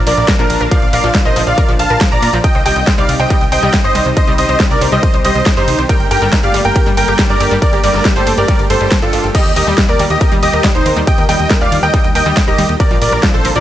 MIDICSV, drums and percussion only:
0, 0, Header, 1, 2, 480
1, 0, Start_track
1, 0, Key_signature, -2, "minor"
1, 0, Tempo, 431655
1, 794, Time_signature, 4, 2, 24, 8
1, 15125, End_track
2, 0, Start_track
2, 0, Title_t, "Drums"
2, 74, Note_on_c, 9, 46, 114
2, 74, Note_on_c, 9, 51, 77
2, 185, Note_off_c, 9, 46, 0
2, 185, Note_off_c, 9, 51, 0
2, 194, Note_on_c, 9, 42, 54
2, 305, Note_off_c, 9, 42, 0
2, 314, Note_on_c, 9, 38, 123
2, 314, Note_on_c, 9, 42, 77
2, 314, Note_on_c, 9, 51, 53
2, 315, Note_on_c, 9, 36, 127
2, 425, Note_off_c, 9, 38, 0
2, 425, Note_off_c, 9, 42, 0
2, 425, Note_off_c, 9, 51, 0
2, 426, Note_off_c, 9, 36, 0
2, 434, Note_on_c, 9, 42, 54
2, 546, Note_off_c, 9, 42, 0
2, 554, Note_on_c, 9, 46, 112
2, 554, Note_on_c, 9, 51, 76
2, 666, Note_off_c, 9, 46, 0
2, 666, Note_off_c, 9, 51, 0
2, 674, Note_on_c, 9, 42, 54
2, 786, Note_off_c, 9, 42, 0
2, 795, Note_on_c, 9, 36, 125
2, 795, Note_on_c, 9, 42, 76
2, 795, Note_on_c, 9, 51, 57
2, 906, Note_off_c, 9, 36, 0
2, 906, Note_off_c, 9, 42, 0
2, 906, Note_off_c, 9, 51, 0
2, 915, Note_on_c, 9, 42, 52
2, 1026, Note_off_c, 9, 42, 0
2, 1035, Note_on_c, 9, 46, 115
2, 1035, Note_on_c, 9, 51, 79
2, 1146, Note_off_c, 9, 46, 0
2, 1146, Note_off_c, 9, 51, 0
2, 1155, Note_on_c, 9, 42, 53
2, 1267, Note_off_c, 9, 42, 0
2, 1275, Note_on_c, 9, 36, 127
2, 1275, Note_on_c, 9, 38, 123
2, 1275, Note_on_c, 9, 42, 76
2, 1275, Note_on_c, 9, 51, 58
2, 1386, Note_off_c, 9, 36, 0
2, 1386, Note_off_c, 9, 38, 0
2, 1386, Note_off_c, 9, 42, 0
2, 1386, Note_off_c, 9, 51, 0
2, 1395, Note_on_c, 9, 42, 51
2, 1506, Note_off_c, 9, 42, 0
2, 1515, Note_on_c, 9, 46, 113
2, 1515, Note_on_c, 9, 51, 81
2, 1626, Note_off_c, 9, 46, 0
2, 1626, Note_off_c, 9, 51, 0
2, 1635, Note_on_c, 9, 42, 52
2, 1746, Note_off_c, 9, 42, 0
2, 1754, Note_on_c, 9, 36, 124
2, 1754, Note_on_c, 9, 42, 75
2, 1754, Note_on_c, 9, 51, 55
2, 1865, Note_off_c, 9, 42, 0
2, 1865, Note_off_c, 9, 51, 0
2, 1866, Note_off_c, 9, 36, 0
2, 1874, Note_on_c, 9, 42, 54
2, 1985, Note_off_c, 9, 42, 0
2, 1994, Note_on_c, 9, 46, 114
2, 1994, Note_on_c, 9, 51, 79
2, 2105, Note_off_c, 9, 46, 0
2, 2105, Note_off_c, 9, 51, 0
2, 2114, Note_on_c, 9, 42, 51
2, 2226, Note_off_c, 9, 42, 0
2, 2234, Note_on_c, 9, 36, 126
2, 2234, Note_on_c, 9, 38, 122
2, 2234, Note_on_c, 9, 42, 76
2, 2234, Note_on_c, 9, 51, 57
2, 2345, Note_off_c, 9, 38, 0
2, 2345, Note_off_c, 9, 42, 0
2, 2345, Note_off_c, 9, 51, 0
2, 2346, Note_off_c, 9, 36, 0
2, 2354, Note_on_c, 9, 42, 52
2, 2465, Note_off_c, 9, 42, 0
2, 2474, Note_on_c, 9, 46, 109
2, 2474, Note_on_c, 9, 51, 80
2, 2585, Note_off_c, 9, 46, 0
2, 2585, Note_off_c, 9, 51, 0
2, 2594, Note_on_c, 9, 42, 51
2, 2705, Note_off_c, 9, 42, 0
2, 2714, Note_on_c, 9, 36, 121
2, 2714, Note_on_c, 9, 42, 76
2, 2714, Note_on_c, 9, 51, 57
2, 2825, Note_off_c, 9, 36, 0
2, 2825, Note_off_c, 9, 42, 0
2, 2825, Note_off_c, 9, 51, 0
2, 2834, Note_on_c, 9, 42, 52
2, 2945, Note_off_c, 9, 42, 0
2, 2954, Note_on_c, 9, 46, 109
2, 2954, Note_on_c, 9, 51, 82
2, 3065, Note_off_c, 9, 46, 0
2, 3065, Note_off_c, 9, 51, 0
2, 3074, Note_on_c, 9, 42, 52
2, 3185, Note_off_c, 9, 42, 0
2, 3194, Note_on_c, 9, 36, 123
2, 3194, Note_on_c, 9, 38, 116
2, 3194, Note_on_c, 9, 42, 79
2, 3194, Note_on_c, 9, 51, 57
2, 3305, Note_off_c, 9, 36, 0
2, 3306, Note_off_c, 9, 38, 0
2, 3306, Note_off_c, 9, 42, 0
2, 3306, Note_off_c, 9, 51, 0
2, 3315, Note_on_c, 9, 42, 53
2, 3426, Note_off_c, 9, 42, 0
2, 3434, Note_on_c, 9, 46, 113
2, 3434, Note_on_c, 9, 51, 81
2, 3545, Note_off_c, 9, 46, 0
2, 3545, Note_off_c, 9, 51, 0
2, 3555, Note_on_c, 9, 42, 52
2, 3666, Note_off_c, 9, 42, 0
2, 3674, Note_on_c, 9, 36, 122
2, 3674, Note_on_c, 9, 42, 76
2, 3674, Note_on_c, 9, 51, 57
2, 3785, Note_off_c, 9, 36, 0
2, 3785, Note_off_c, 9, 42, 0
2, 3785, Note_off_c, 9, 51, 0
2, 3794, Note_on_c, 9, 42, 53
2, 3906, Note_off_c, 9, 42, 0
2, 3914, Note_on_c, 9, 46, 109
2, 3914, Note_on_c, 9, 51, 80
2, 4026, Note_off_c, 9, 46, 0
2, 4026, Note_off_c, 9, 51, 0
2, 4034, Note_on_c, 9, 42, 50
2, 4146, Note_off_c, 9, 42, 0
2, 4154, Note_on_c, 9, 36, 121
2, 4154, Note_on_c, 9, 38, 116
2, 4154, Note_on_c, 9, 42, 76
2, 4154, Note_on_c, 9, 51, 57
2, 4265, Note_off_c, 9, 36, 0
2, 4265, Note_off_c, 9, 38, 0
2, 4265, Note_off_c, 9, 42, 0
2, 4265, Note_off_c, 9, 51, 0
2, 4274, Note_on_c, 9, 42, 54
2, 4385, Note_off_c, 9, 42, 0
2, 4394, Note_on_c, 9, 46, 112
2, 4394, Note_on_c, 9, 51, 78
2, 4505, Note_off_c, 9, 46, 0
2, 4505, Note_off_c, 9, 51, 0
2, 4514, Note_on_c, 9, 42, 54
2, 4625, Note_off_c, 9, 42, 0
2, 4634, Note_on_c, 9, 36, 115
2, 4634, Note_on_c, 9, 42, 79
2, 4634, Note_on_c, 9, 51, 59
2, 4745, Note_off_c, 9, 36, 0
2, 4745, Note_off_c, 9, 42, 0
2, 4745, Note_off_c, 9, 51, 0
2, 4754, Note_on_c, 9, 42, 53
2, 4865, Note_off_c, 9, 42, 0
2, 4874, Note_on_c, 9, 46, 104
2, 4874, Note_on_c, 9, 51, 84
2, 4985, Note_off_c, 9, 46, 0
2, 4985, Note_off_c, 9, 51, 0
2, 4994, Note_on_c, 9, 42, 53
2, 5105, Note_off_c, 9, 42, 0
2, 5114, Note_on_c, 9, 36, 119
2, 5114, Note_on_c, 9, 38, 115
2, 5114, Note_on_c, 9, 42, 81
2, 5114, Note_on_c, 9, 51, 58
2, 5225, Note_off_c, 9, 36, 0
2, 5225, Note_off_c, 9, 38, 0
2, 5225, Note_off_c, 9, 42, 0
2, 5225, Note_off_c, 9, 51, 0
2, 5234, Note_on_c, 9, 42, 54
2, 5345, Note_off_c, 9, 42, 0
2, 5353, Note_on_c, 9, 46, 105
2, 5353, Note_on_c, 9, 51, 86
2, 5464, Note_off_c, 9, 46, 0
2, 5464, Note_off_c, 9, 51, 0
2, 5473, Note_on_c, 9, 42, 52
2, 5585, Note_off_c, 9, 42, 0
2, 5593, Note_on_c, 9, 42, 80
2, 5593, Note_on_c, 9, 51, 59
2, 5594, Note_on_c, 9, 36, 118
2, 5704, Note_off_c, 9, 42, 0
2, 5704, Note_off_c, 9, 51, 0
2, 5705, Note_off_c, 9, 36, 0
2, 5713, Note_on_c, 9, 42, 54
2, 5824, Note_off_c, 9, 42, 0
2, 5833, Note_on_c, 9, 46, 105
2, 5833, Note_on_c, 9, 51, 85
2, 5944, Note_off_c, 9, 46, 0
2, 5944, Note_off_c, 9, 51, 0
2, 5954, Note_on_c, 9, 42, 55
2, 6065, Note_off_c, 9, 42, 0
2, 6074, Note_on_c, 9, 36, 121
2, 6074, Note_on_c, 9, 38, 117
2, 6074, Note_on_c, 9, 42, 80
2, 6074, Note_on_c, 9, 51, 60
2, 6185, Note_off_c, 9, 36, 0
2, 6185, Note_off_c, 9, 38, 0
2, 6185, Note_off_c, 9, 42, 0
2, 6185, Note_off_c, 9, 51, 0
2, 6194, Note_on_c, 9, 42, 53
2, 6305, Note_off_c, 9, 42, 0
2, 6314, Note_on_c, 9, 46, 105
2, 6314, Note_on_c, 9, 51, 84
2, 6425, Note_off_c, 9, 46, 0
2, 6425, Note_off_c, 9, 51, 0
2, 6434, Note_on_c, 9, 42, 53
2, 6546, Note_off_c, 9, 42, 0
2, 6554, Note_on_c, 9, 36, 114
2, 6554, Note_on_c, 9, 42, 83
2, 6554, Note_on_c, 9, 51, 61
2, 6665, Note_off_c, 9, 36, 0
2, 6666, Note_off_c, 9, 42, 0
2, 6666, Note_off_c, 9, 51, 0
2, 6674, Note_on_c, 9, 42, 56
2, 6785, Note_off_c, 9, 42, 0
2, 6794, Note_on_c, 9, 46, 105
2, 6794, Note_on_c, 9, 51, 88
2, 6905, Note_off_c, 9, 46, 0
2, 6905, Note_off_c, 9, 51, 0
2, 6914, Note_on_c, 9, 42, 56
2, 7026, Note_off_c, 9, 42, 0
2, 7034, Note_on_c, 9, 36, 117
2, 7034, Note_on_c, 9, 38, 121
2, 7034, Note_on_c, 9, 42, 83
2, 7034, Note_on_c, 9, 51, 62
2, 7145, Note_off_c, 9, 36, 0
2, 7145, Note_off_c, 9, 38, 0
2, 7145, Note_off_c, 9, 42, 0
2, 7145, Note_off_c, 9, 51, 0
2, 7154, Note_on_c, 9, 42, 57
2, 7265, Note_off_c, 9, 42, 0
2, 7274, Note_on_c, 9, 46, 105
2, 7274, Note_on_c, 9, 51, 85
2, 7385, Note_off_c, 9, 46, 0
2, 7385, Note_off_c, 9, 51, 0
2, 7393, Note_on_c, 9, 42, 57
2, 7505, Note_off_c, 9, 42, 0
2, 7514, Note_on_c, 9, 36, 119
2, 7514, Note_on_c, 9, 42, 83
2, 7514, Note_on_c, 9, 51, 61
2, 7625, Note_off_c, 9, 36, 0
2, 7625, Note_off_c, 9, 42, 0
2, 7625, Note_off_c, 9, 51, 0
2, 7633, Note_on_c, 9, 42, 57
2, 7745, Note_off_c, 9, 42, 0
2, 7753, Note_on_c, 9, 46, 104
2, 7753, Note_on_c, 9, 51, 87
2, 7865, Note_off_c, 9, 46, 0
2, 7865, Note_off_c, 9, 51, 0
2, 7873, Note_on_c, 9, 42, 56
2, 7984, Note_off_c, 9, 42, 0
2, 7993, Note_on_c, 9, 38, 122
2, 7993, Note_on_c, 9, 42, 82
2, 7993, Note_on_c, 9, 51, 62
2, 7994, Note_on_c, 9, 36, 116
2, 8104, Note_off_c, 9, 38, 0
2, 8104, Note_off_c, 9, 42, 0
2, 8104, Note_off_c, 9, 51, 0
2, 8105, Note_off_c, 9, 36, 0
2, 8113, Note_on_c, 9, 42, 57
2, 8224, Note_off_c, 9, 42, 0
2, 8233, Note_on_c, 9, 46, 105
2, 8233, Note_on_c, 9, 51, 88
2, 8344, Note_off_c, 9, 46, 0
2, 8344, Note_off_c, 9, 51, 0
2, 8353, Note_on_c, 9, 42, 57
2, 8465, Note_off_c, 9, 42, 0
2, 8473, Note_on_c, 9, 42, 84
2, 8473, Note_on_c, 9, 51, 58
2, 8474, Note_on_c, 9, 36, 119
2, 8584, Note_off_c, 9, 42, 0
2, 8584, Note_off_c, 9, 51, 0
2, 8585, Note_off_c, 9, 36, 0
2, 8594, Note_on_c, 9, 42, 55
2, 8705, Note_off_c, 9, 42, 0
2, 8714, Note_on_c, 9, 46, 108
2, 8714, Note_on_c, 9, 51, 85
2, 8825, Note_off_c, 9, 46, 0
2, 8825, Note_off_c, 9, 51, 0
2, 8833, Note_on_c, 9, 38, 39
2, 8944, Note_off_c, 9, 38, 0
2, 8953, Note_on_c, 9, 38, 125
2, 8953, Note_on_c, 9, 42, 86
2, 8953, Note_on_c, 9, 51, 60
2, 8954, Note_on_c, 9, 36, 118
2, 9064, Note_off_c, 9, 38, 0
2, 9064, Note_off_c, 9, 42, 0
2, 9064, Note_off_c, 9, 51, 0
2, 9065, Note_off_c, 9, 36, 0
2, 9074, Note_on_c, 9, 42, 57
2, 9185, Note_off_c, 9, 42, 0
2, 9194, Note_on_c, 9, 46, 108
2, 9194, Note_on_c, 9, 51, 81
2, 9305, Note_off_c, 9, 46, 0
2, 9305, Note_off_c, 9, 51, 0
2, 9314, Note_on_c, 9, 42, 56
2, 9425, Note_off_c, 9, 42, 0
2, 9434, Note_on_c, 9, 36, 116
2, 9434, Note_on_c, 9, 42, 82
2, 9434, Note_on_c, 9, 51, 59
2, 9545, Note_off_c, 9, 36, 0
2, 9545, Note_off_c, 9, 42, 0
2, 9545, Note_off_c, 9, 51, 0
2, 9554, Note_on_c, 9, 42, 59
2, 9665, Note_off_c, 9, 42, 0
2, 9674, Note_on_c, 9, 46, 106
2, 9674, Note_on_c, 9, 51, 83
2, 9785, Note_off_c, 9, 46, 0
2, 9785, Note_off_c, 9, 51, 0
2, 9794, Note_on_c, 9, 42, 56
2, 9905, Note_off_c, 9, 42, 0
2, 9914, Note_on_c, 9, 36, 117
2, 9914, Note_on_c, 9, 38, 124
2, 9914, Note_on_c, 9, 42, 84
2, 9914, Note_on_c, 9, 51, 59
2, 10025, Note_off_c, 9, 36, 0
2, 10025, Note_off_c, 9, 38, 0
2, 10025, Note_off_c, 9, 42, 0
2, 10025, Note_off_c, 9, 51, 0
2, 10034, Note_on_c, 9, 42, 59
2, 10145, Note_off_c, 9, 42, 0
2, 10154, Note_on_c, 9, 46, 104
2, 10154, Note_on_c, 9, 51, 83
2, 10265, Note_off_c, 9, 46, 0
2, 10265, Note_off_c, 9, 51, 0
2, 10274, Note_on_c, 9, 42, 59
2, 10385, Note_off_c, 9, 42, 0
2, 10394, Note_on_c, 9, 36, 117
2, 10394, Note_on_c, 9, 42, 84
2, 10394, Note_on_c, 9, 49, 78
2, 10394, Note_on_c, 9, 51, 58
2, 10505, Note_off_c, 9, 36, 0
2, 10505, Note_off_c, 9, 42, 0
2, 10505, Note_off_c, 9, 49, 0
2, 10505, Note_off_c, 9, 51, 0
2, 10514, Note_on_c, 9, 42, 57
2, 10625, Note_off_c, 9, 42, 0
2, 10634, Note_on_c, 9, 46, 109
2, 10634, Note_on_c, 9, 51, 83
2, 10745, Note_off_c, 9, 46, 0
2, 10745, Note_off_c, 9, 51, 0
2, 10754, Note_on_c, 9, 42, 57
2, 10865, Note_off_c, 9, 42, 0
2, 10873, Note_on_c, 9, 38, 127
2, 10873, Note_on_c, 9, 42, 84
2, 10873, Note_on_c, 9, 51, 58
2, 10874, Note_on_c, 9, 36, 125
2, 10984, Note_off_c, 9, 38, 0
2, 10984, Note_off_c, 9, 42, 0
2, 10984, Note_off_c, 9, 51, 0
2, 10985, Note_off_c, 9, 36, 0
2, 10993, Note_on_c, 9, 42, 57
2, 11105, Note_off_c, 9, 42, 0
2, 11113, Note_on_c, 9, 46, 106
2, 11113, Note_on_c, 9, 51, 82
2, 11224, Note_off_c, 9, 46, 0
2, 11224, Note_off_c, 9, 51, 0
2, 11234, Note_on_c, 9, 42, 56
2, 11345, Note_off_c, 9, 42, 0
2, 11354, Note_on_c, 9, 36, 123
2, 11354, Note_on_c, 9, 42, 83
2, 11354, Note_on_c, 9, 51, 56
2, 11465, Note_off_c, 9, 36, 0
2, 11465, Note_off_c, 9, 42, 0
2, 11465, Note_off_c, 9, 51, 0
2, 11474, Note_on_c, 9, 42, 57
2, 11585, Note_off_c, 9, 42, 0
2, 11594, Note_on_c, 9, 46, 107
2, 11594, Note_on_c, 9, 51, 79
2, 11705, Note_off_c, 9, 46, 0
2, 11705, Note_off_c, 9, 51, 0
2, 11714, Note_on_c, 9, 42, 56
2, 11825, Note_off_c, 9, 42, 0
2, 11834, Note_on_c, 9, 36, 125
2, 11834, Note_on_c, 9, 38, 126
2, 11834, Note_on_c, 9, 42, 82
2, 11834, Note_on_c, 9, 51, 58
2, 11945, Note_off_c, 9, 36, 0
2, 11945, Note_off_c, 9, 38, 0
2, 11945, Note_off_c, 9, 42, 0
2, 11945, Note_off_c, 9, 51, 0
2, 11954, Note_on_c, 9, 42, 58
2, 12065, Note_off_c, 9, 42, 0
2, 12074, Note_on_c, 9, 46, 106
2, 12074, Note_on_c, 9, 51, 79
2, 12185, Note_off_c, 9, 46, 0
2, 12185, Note_off_c, 9, 51, 0
2, 12193, Note_on_c, 9, 42, 59
2, 12305, Note_off_c, 9, 42, 0
2, 12313, Note_on_c, 9, 42, 83
2, 12313, Note_on_c, 9, 51, 55
2, 12314, Note_on_c, 9, 36, 127
2, 12424, Note_off_c, 9, 42, 0
2, 12424, Note_off_c, 9, 51, 0
2, 12425, Note_off_c, 9, 36, 0
2, 12433, Note_on_c, 9, 42, 56
2, 12544, Note_off_c, 9, 42, 0
2, 12553, Note_on_c, 9, 46, 116
2, 12553, Note_on_c, 9, 51, 78
2, 12664, Note_off_c, 9, 46, 0
2, 12664, Note_off_c, 9, 51, 0
2, 12673, Note_on_c, 9, 42, 56
2, 12784, Note_off_c, 9, 42, 0
2, 12793, Note_on_c, 9, 38, 126
2, 12793, Note_on_c, 9, 42, 83
2, 12793, Note_on_c, 9, 51, 56
2, 12794, Note_on_c, 9, 36, 127
2, 12904, Note_off_c, 9, 38, 0
2, 12904, Note_off_c, 9, 42, 0
2, 12904, Note_off_c, 9, 51, 0
2, 12905, Note_off_c, 9, 36, 0
2, 12913, Note_on_c, 9, 42, 54
2, 13024, Note_off_c, 9, 42, 0
2, 13033, Note_on_c, 9, 46, 112
2, 13033, Note_on_c, 9, 51, 78
2, 13144, Note_off_c, 9, 46, 0
2, 13144, Note_off_c, 9, 51, 0
2, 13154, Note_on_c, 9, 42, 54
2, 13265, Note_off_c, 9, 42, 0
2, 13273, Note_on_c, 9, 36, 123
2, 13273, Note_on_c, 9, 42, 82
2, 13273, Note_on_c, 9, 51, 54
2, 13385, Note_off_c, 9, 36, 0
2, 13385, Note_off_c, 9, 42, 0
2, 13385, Note_off_c, 9, 51, 0
2, 13394, Note_on_c, 9, 42, 56
2, 13505, Note_off_c, 9, 42, 0
2, 13514, Note_on_c, 9, 46, 113
2, 13514, Note_on_c, 9, 51, 78
2, 13625, Note_off_c, 9, 46, 0
2, 13625, Note_off_c, 9, 51, 0
2, 13634, Note_on_c, 9, 42, 56
2, 13745, Note_off_c, 9, 42, 0
2, 13754, Note_on_c, 9, 36, 127
2, 13754, Note_on_c, 9, 38, 127
2, 13754, Note_on_c, 9, 42, 81
2, 13754, Note_on_c, 9, 51, 56
2, 13865, Note_off_c, 9, 36, 0
2, 13865, Note_off_c, 9, 38, 0
2, 13865, Note_off_c, 9, 42, 0
2, 13865, Note_off_c, 9, 51, 0
2, 13874, Note_on_c, 9, 42, 55
2, 13985, Note_off_c, 9, 42, 0
2, 13994, Note_on_c, 9, 46, 114
2, 13994, Note_on_c, 9, 51, 77
2, 14105, Note_off_c, 9, 46, 0
2, 14105, Note_off_c, 9, 51, 0
2, 14114, Note_on_c, 9, 42, 56
2, 14225, Note_off_c, 9, 42, 0
2, 14234, Note_on_c, 9, 36, 127
2, 14234, Note_on_c, 9, 42, 78
2, 14234, Note_on_c, 9, 51, 52
2, 14345, Note_off_c, 9, 36, 0
2, 14345, Note_off_c, 9, 42, 0
2, 14345, Note_off_c, 9, 51, 0
2, 14354, Note_on_c, 9, 42, 55
2, 14465, Note_off_c, 9, 42, 0
2, 14474, Note_on_c, 9, 46, 120
2, 14474, Note_on_c, 9, 51, 77
2, 14585, Note_off_c, 9, 46, 0
2, 14585, Note_off_c, 9, 51, 0
2, 14594, Note_on_c, 9, 42, 53
2, 14705, Note_off_c, 9, 42, 0
2, 14714, Note_on_c, 9, 36, 127
2, 14714, Note_on_c, 9, 38, 127
2, 14714, Note_on_c, 9, 42, 82
2, 14714, Note_on_c, 9, 51, 57
2, 14825, Note_off_c, 9, 36, 0
2, 14825, Note_off_c, 9, 38, 0
2, 14825, Note_off_c, 9, 42, 0
2, 14825, Note_off_c, 9, 51, 0
2, 14834, Note_on_c, 9, 42, 53
2, 14945, Note_off_c, 9, 42, 0
2, 14954, Note_on_c, 9, 46, 116
2, 14954, Note_on_c, 9, 51, 75
2, 15065, Note_off_c, 9, 46, 0
2, 15065, Note_off_c, 9, 51, 0
2, 15074, Note_on_c, 9, 42, 52
2, 15125, Note_off_c, 9, 42, 0
2, 15125, End_track
0, 0, End_of_file